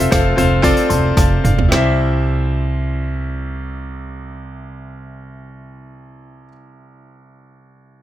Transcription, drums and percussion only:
0, 0, Header, 1, 2, 480
1, 0, Start_track
1, 0, Key_signature, 0, "major"
1, 0, Tempo, 532387
1, 1553, Time_signature, 4, 2, 24, 8
1, 1553, Tempo, 559701
1, 6957, End_track
2, 0, Start_track
2, 0, Title_t, "Drums"
2, 0, Note_on_c, 9, 46, 56
2, 91, Note_off_c, 9, 46, 0
2, 109, Note_on_c, 9, 36, 118
2, 111, Note_on_c, 9, 38, 99
2, 114, Note_on_c, 9, 46, 98
2, 199, Note_off_c, 9, 36, 0
2, 201, Note_off_c, 9, 38, 0
2, 204, Note_off_c, 9, 46, 0
2, 343, Note_on_c, 9, 46, 74
2, 344, Note_on_c, 9, 43, 58
2, 433, Note_off_c, 9, 46, 0
2, 434, Note_off_c, 9, 43, 0
2, 574, Note_on_c, 9, 36, 105
2, 577, Note_on_c, 9, 46, 93
2, 665, Note_off_c, 9, 36, 0
2, 667, Note_off_c, 9, 46, 0
2, 693, Note_on_c, 9, 46, 58
2, 783, Note_off_c, 9, 46, 0
2, 813, Note_on_c, 9, 46, 76
2, 815, Note_on_c, 9, 43, 58
2, 903, Note_off_c, 9, 46, 0
2, 905, Note_off_c, 9, 43, 0
2, 1055, Note_on_c, 9, 36, 113
2, 1058, Note_on_c, 9, 38, 58
2, 1059, Note_on_c, 9, 46, 84
2, 1145, Note_off_c, 9, 36, 0
2, 1148, Note_off_c, 9, 38, 0
2, 1149, Note_off_c, 9, 46, 0
2, 1305, Note_on_c, 9, 45, 87
2, 1307, Note_on_c, 9, 46, 68
2, 1395, Note_off_c, 9, 45, 0
2, 1397, Note_off_c, 9, 46, 0
2, 1430, Note_on_c, 9, 43, 106
2, 1520, Note_off_c, 9, 43, 0
2, 1550, Note_on_c, 9, 38, 106
2, 1636, Note_off_c, 9, 38, 0
2, 6957, End_track
0, 0, End_of_file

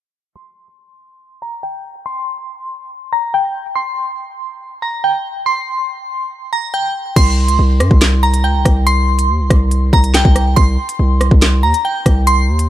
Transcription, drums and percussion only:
0, 0, Header, 1, 2, 480
1, 0, Start_track
1, 0, Key_signature, -3, "minor"
1, 0, Tempo, 425532
1, 402, Time_signature, 4, 2, 24, 8
1, 14314, End_track
2, 0, Start_track
2, 0, Title_t, "Drums"
2, 8081, Note_on_c, 9, 36, 124
2, 8081, Note_on_c, 9, 42, 83
2, 8081, Note_on_c, 9, 49, 106
2, 8194, Note_off_c, 9, 36, 0
2, 8194, Note_off_c, 9, 42, 0
2, 8194, Note_off_c, 9, 49, 0
2, 8442, Note_on_c, 9, 42, 79
2, 8555, Note_off_c, 9, 42, 0
2, 8801, Note_on_c, 9, 37, 103
2, 8804, Note_on_c, 9, 42, 78
2, 8914, Note_off_c, 9, 37, 0
2, 8916, Note_off_c, 9, 42, 0
2, 8921, Note_on_c, 9, 36, 90
2, 9033, Note_off_c, 9, 36, 0
2, 9036, Note_on_c, 9, 42, 67
2, 9041, Note_on_c, 9, 38, 118
2, 9050, Note_on_c, 9, 39, 93
2, 9149, Note_off_c, 9, 42, 0
2, 9154, Note_off_c, 9, 38, 0
2, 9163, Note_off_c, 9, 39, 0
2, 9403, Note_on_c, 9, 42, 78
2, 9516, Note_off_c, 9, 42, 0
2, 9762, Note_on_c, 9, 36, 92
2, 9762, Note_on_c, 9, 37, 92
2, 9764, Note_on_c, 9, 42, 91
2, 9875, Note_off_c, 9, 36, 0
2, 9875, Note_off_c, 9, 37, 0
2, 9877, Note_off_c, 9, 42, 0
2, 10002, Note_on_c, 9, 42, 82
2, 10114, Note_off_c, 9, 42, 0
2, 10363, Note_on_c, 9, 42, 76
2, 10476, Note_off_c, 9, 42, 0
2, 10721, Note_on_c, 9, 36, 107
2, 10721, Note_on_c, 9, 37, 105
2, 10723, Note_on_c, 9, 42, 78
2, 10834, Note_off_c, 9, 36, 0
2, 10834, Note_off_c, 9, 37, 0
2, 10836, Note_off_c, 9, 42, 0
2, 10957, Note_on_c, 9, 42, 68
2, 11070, Note_off_c, 9, 42, 0
2, 11200, Note_on_c, 9, 36, 96
2, 11313, Note_off_c, 9, 36, 0
2, 11324, Note_on_c, 9, 42, 75
2, 11436, Note_off_c, 9, 42, 0
2, 11442, Note_on_c, 9, 38, 116
2, 11444, Note_on_c, 9, 42, 85
2, 11451, Note_on_c, 9, 39, 92
2, 11555, Note_off_c, 9, 38, 0
2, 11557, Note_off_c, 9, 42, 0
2, 11562, Note_on_c, 9, 36, 105
2, 11563, Note_off_c, 9, 39, 0
2, 11674, Note_off_c, 9, 36, 0
2, 11682, Note_on_c, 9, 37, 91
2, 11684, Note_on_c, 9, 42, 89
2, 11794, Note_off_c, 9, 37, 0
2, 11797, Note_off_c, 9, 42, 0
2, 11921, Note_on_c, 9, 36, 120
2, 11921, Note_on_c, 9, 42, 83
2, 12034, Note_off_c, 9, 36, 0
2, 12034, Note_off_c, 9, 42, 0
2, 12283, Note_on_c, 9, 42, 79
2, 12395, Note_off_c, 9, 42, 0
2, 12642, Note_on_c, 9, 37, 99
2, 12644, Note_on_c, 9, 42, 77
2, 12755, Note_off_c, 9, 37, 0
2, 12757, Note_off_c, 9, 42, 0
2, 12761, Note_on_c, 9, 36, 95
2, 12874, Note_off_c, 9, 36, 0
2, 12877, Note_on_c, 9, 42, 67
2, 12882, Note_on_c, 9, 38, 122
2, 12891, Note_on_c, 9, 39, 96
2, 12990, Note_off_c, 9, 42, 0
2, 12995, Note_off_c, 9, 38, 0
2, 13004, Note_off_c, 9, 39, 0
2, 13243, Note_on_c, 9, 42, 77
2, 13356, Note_off_c, 9, 42, 0
2, 13602, Note_on_c, 9, 36, 93
2, 13602, Note_on_c, 9, 37, 93
2, 13604, Note_on_c, 9, 42, 89
2, 13714, Note_off_c, 9, 37, 0
2, 13715, Note_off_c, 9, 36, 0
2, 13716, Note_off_c, 9, 42, 0
2, 13841, Note_on_c, 9, 42, 83
2, 13954, Note_off_c, 9, 42, 0
2, 14203, Note_on_c, 9, 42, 78
2, 14314, Note_off_c, 9, 42, 0
2, 14314, End_track
0, 0, End_of_file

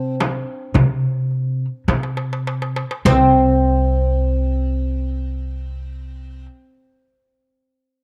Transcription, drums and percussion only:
0, 0, Header, 1, 3, 480
1, 0, Start_track
1, 0, Tempo, 1115242
1, 810, Tempo, 1171875
1, 1290, Tempo, 1207243
1, 1291, Time_signature, 10, 3, 24, 8
1, 3271, End_track
2, 0, Start_track
2, 0, Title_t, "Darbuka"
2, 88, Note_on_c, 9, 63, 68
2, 131, Note_off_c, 9, 63, 0
2, 320, Note_on_c, 9, 64, 84
2, 363, Note_off_c, 9, 64, 0
2, 563, Note_on_c, 9, 62, 24
2, 606, Note_off_c, 9, 62, 0
2, 815, Note_on_c, 9, 63, 53
2, 856, Note_off_c, 9, 63, 0
2, 872, Note_on_c, 9, 62, 60
2, 913, Note_off_c, 9, 62, 0
2, 928, Note_on_c, 9, 63, 60
2, 969, Note_off_c, 9, 63, 0
2, 993, Note_on_c, 9, 62, 71
2, 1034, Note_off_c, 9, 62, 0
2, 1052, Note_on_c, 9, 63, 69
2, 1093, Note_off_c, 9, 63, 0
2, 1112, Note_on_c, 9, 62, 72
2, 1153, Note_off_c, 9, 62, 0
2, 1171, Note_on_c, 9, 63, 69
2, 1212, Note_off_c, 9, 63, 0
2, 1231, Note_on_c, 9, 62, 80
2, 1272, Note_off_c, 9, 62, 0
2, 1295, Note_on_c, 9, 64, 68
2, 1335, Note_off_c, 9, 64, 0
2, 3271, End_track
3, 0, Start_track
3, 0, Title_t, "Frame drum"
3, 89, Note_on_c, 9, 64, 71
3, 132, Note_off_c, 9, 64, 0
3, 323, Note_on_c, 9, 64, 77
3, 366, Note_off_c, 9, 64, 0
3, 811, Note_on_c, 9, 64, 74
3, 852, Note_off_c, 9, 64, 0
3, 1294, Note_on_c, 9, 64, 74
3, 1333, Note_off_c, 9, 64, 0
3, 3271, End_track
0, 0, End_of_file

